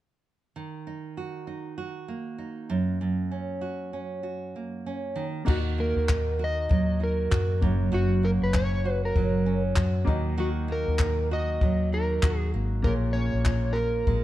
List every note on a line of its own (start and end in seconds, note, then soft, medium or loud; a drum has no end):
0.56 2.79 D#3 medium
0.87 1.46 D#4 soft
1.17 1.77 F#4 soft
1.47 2.37 D#4 soft
1.78 3.61 F#4 medium
2.08 4.55 A#3 soft
2.38 2.78 D#4 soft
2.70 3.00 F#2 medium
3.01 5.24 F#2 medium
3.31 3.92 C#4 soft
3.61 4.23 F#4 soft
3.93 4.85 C#4 soft
4.23 5.46 F#4 medium
4.56 5.78 A#3 soft
4.86 5.25 C#4 soft
5.16 5.45 D#3 medium
5.45 5.93 D#2 loud
5.45 7.69 D#3 medium
5.45 7.57 A#3 medium
5.45 7.58 D#4 medium
5.45 6.39 F#4 medium
5.45 7.58 F#4 medium
5.45 7.59 D#5 medium
5.45 kick loud
5.45 crash medium
5.50 5.58 F#4 medium
5.78 8.23 A#3 medium
5.78 6.43 A#4 medium
5.97 6.67 D#2 medium
6.09 6.99 D#4 medium
6.09 kick loud
6.09 clap loud
6.39 7.30 F#4 medium
6.44 6.99 D#5 loud
6.69 7.28 D#2 medium
6.69 9.16 F#3 medium
6.69 kick loud
7.00 7.69 D#4 medium
7.00 7.60 A#4 medium
7.31 7.60 F#2 medium
7.31 7.92 F#4 medium
7.31 kick loud
7.31 clap loud
7.61 7.91 F#1 medium
7.61 7.90 F#2 medium
7.61 10.03 A#3 medium
7.61 10.04 C#4 medium
7.61 10.04 F#4 medium
7.61 10.05 C#5 medium
7.61 kick loud
7.92 8.38 F#1 medium
7.92 10.14 F#2 medium
7.92 8.85 F#4 medium
7.92 8.25 F#4 medium
8.23 10.68 A#3 medium
8.23 8.30 A#4 medium
8.42 9.12 F#1 medium
8.42 8.56 B4 medium
8.53 9.45 C#4 medium
8.53 9.01 C#5 loud
8.53 kick medium
8.53 clap loud
8.85 9.75 F#4 medium
9.05 9.62 A#4 medium
9.16 9.73 F#1 medium
9.16 11.62 F#3 medium
9.16 kick loud
9.46 10.15 C#4 medium
9.76 10.05 F#2 medium
9.76 10.38 F#4 medium
9.76 kick loud
9.76 clap loud
10.05 10.84 D#2 medium
10.05 10.36 D#3 medium
10.05 12.48 A#3 medium
10.05 12.49 D#4 medium
10.05 12.50 F#4 medium
10.05 kick loud
10.09 12.50 D#5 medium
10.38 12.84 D#3 medium
10.38 11.30 F#4 medium
10.38 10.48 F#4 medium
10.68 12.53 A#3 medium
10.68 11.28 A#4 medium
10.88 11.58 D#2 medium
10.99 11.92 D#4 medium
10.99 kick loud
10.99 clap loud
11.31 12.22 F#4 medium
11.31 11.89 D#5 loud
11.61 12.19 D#2 loud
11.61 12.92 F#3 medium
11.61 kick loud
11.93 12.92 D#4 medium
11.93 12.37 A#4 medium
12.23 12.51 D#2 medium
12.23 12.84 F#4 medium
12.23 kick loud
12.23 clap loud
12.37 12.50 G#4 medium
12.54 12.82 G#1 medium
12.54 13.14 A#3 medium
12.82 13.30 A#1 loud
12.82 14.24 A#2 medium
12.82 14.24 A#3 medium
12.82 14.24 F4 medium
12.82 14.24 G#4 medium
12.82 12.93 A#4 medium
12.82 13.75 A#4 medium
12.82 kick loud
12.87 14.24 C#5 medium
13.13 14.24 C#4 medium
13.13 13.77 C#5 loud
13.33 14.03 A#1 medium
13.44 14.24 F4 medium
13.44 kick medium
13.44 clap loud
13.73 14.24 A#4 medium
14.07 14.24 A#1 medium
14.07 14.24 G#3 medium
14.07 kick medium